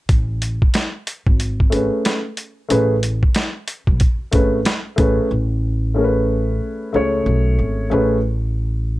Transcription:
0.09 0.58 A1 medium
0.09 kick loud
0.09 closed hi-hat medium
0.42 closed hi-hat medium
0.62 kick medium
0.74 snare loud
0.74 closed hi-hat medium
1.07 closed hi-hat medium
1.26 1.88 G#1 medium
1.26 kick medium
1.40 closed hi-hat medium
1.60 kick medium
1.70 2.19 A3 medium
1.70 2.20 C#4 medium
1.70 2.21 G#4 medium
1.70 2.21 B4 medium
1.70 closed hi-hat medium
2.05 snare medium
2.05 closed hi-hat medium
2.37 closed hi-hat medium
2.69 3.19 A1 medium
2.69 2.94 A3 medium
2.69 2.95 C#4 medium
2.69 2.95 G#4 medium
2.69 2.96 B4 medium
2.69 closed hi-hat medium
3.03 closed hi-hat medium
3.23 kick medium
3.35 snare loud
3.35 closed hi-hat medium
3.68 closed hi-hat medium
3.87 3.99 B1 medium
3.87 kick medium
4.00 kick medium
4.00 closed hi-hat medium
4.31 4.63 G#1 medium
4.31 4.57 A3 medium
4.31 4.58 C#4 medium
4.31 4.58 G#4 medium
4.31 4.59 B4 medium
4.31 kick medium
4.31 closed hi-hat medium
4.65 snare loud
4.65 closed hi-hat medium
4.96 5.16 A1 loud
4.96 5.27 A3 medium
4.96 5.27 C#4 medium
4.96 5.28 G#4 medium
4.96 5.28 B4 medium
4.96 kick loud
4.96 closed hi-hat medium
5.31 6.57 A1 medium
5.94 6.88 A3 medium
5.94 6.88 C#4 medium
5.94 6.89 G#4 medium
5.94 6.05 A#4 medium
6.04 6.93 B4 medium
6.93 7.24 C#2 medium
6.93 7.86 A3 medium
6.93 7.86 C#4 medium
6.93 7.87 G#4 medium
6.93 7.87 C#5 medium
7.26 7.56 B1 loud
7.59 7.88 G#1 medium
7.90 9.00 A1 loud
7.90 8.16 A3 medium
7.90 8.16 C#4 medium
7.90 8.17 G#4 medium
7.90 8.17 B4 medium

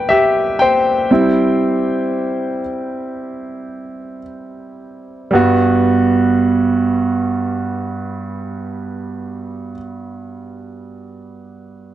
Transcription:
0.00 1.12 B4 medium
0.00 0.59 G5 medium
0.09 0.56 G4 medium
0.09 0.61 E5 medium
0.59 4.20 C5 medium
0.59 4.19 G5 medium
1.11 2.60 G3 soft
1.11 2.60 C4 soft
1.11 2.60 E4 soft
5.31 9.74 G2 medium
5.31 9.71 G3 soft
5.31 9.73 B3 soft
5.35 9.76 F#4 medium

